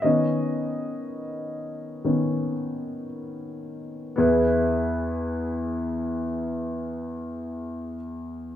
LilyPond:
<<
  \new Staff \with { instrumentName = "Grand piano" } { \time 4/4 \key e \major \tempo 4 = 54 dis''2. r4 | <b e' gis' b'>1 | }
  \new Staff \with { instrumentName = "Grand piano" } { \time 4/4 \key e \major <dis b cis'>2 <dis b cis'>8 r4. | e,1 | }
>>